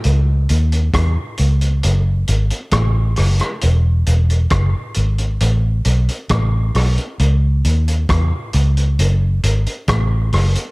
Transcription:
<<
  \new Staff \with { instrumentName = "Fingered electric bass" } { \clef bass \time 4/4 \key cis \minor \tempo 4 = 67 cis,8 dis,8 e,16 r16 cis,8 fis,,8 gis,,16 r16 a,,8 fis,,16 r16 | e,,8 e,,8 fis,,16 r16 gis,,8 a,,8 b,,16 r16 a,,8 b,,16 r16 | cis,8 dis,8 e,16 r16 cis,8 fis,,8 gis,,16 r16 a,,8 fis,,16 r16 | }
  \new DrumStaff \with { instrumentName = "Drums" } \drummode { \time 4/4 hh8 hh16 hh16 <hh bd ss>8 hh16 hh16 hh8 hh16 hh16 <hh bd ss>8 <hho ss>16 <hh ss>16 | hh8 hh16 hh16 <hh bd ss>8 hh16 hh16 hh8 hh16 hh16 <hh bd ss>8 <hho ss>16 hh16 | hh8 hh16 hh16 <hh bd ss>8 hh16 hh16 hh8 hh16 hh16 <hh bd ss>8 <hho ss>16 hh16 | }
>>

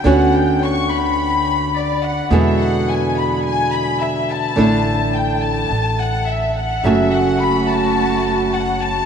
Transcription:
<<
  \new Staff \with { instrumentName = "Violin section" } { \time 4/4 \key fis \phrygian \tempo 4 = 106 fis''8 g''8 cis'''8 b''4. d''8 fis''8 | e''8 fis''8 gis''8 b''8 gis''8 b''8 e''8 a''8~ | a''4 g''8 a''4 fis''8 e''8 fis''8 | e''8 fis''8 b''8 a''4. fis''8 a''8 | }
  \new Staff \with { instrumentName = "String section" } { \time 4/4 \key fis \phrygian r1 | r1 | r1 | <a cis' fis'>1 | }
  \new Staff \with { instrumentName = "Nylon-string guitar" } { \time 4/4 \key fis \phrygian <d b cis' fis'>1 | <b, d gis b e'>1 | <d a d' e'>2 r2 | <cis fis a cis' fis'>1 | }
  \new Staff \with { instrumentName = "Upright bass" } { \clef bass \time 4/4 \key fis \phrygian d,1 | e,1 | a,,2 a,,2 | fis,,1 | }
>>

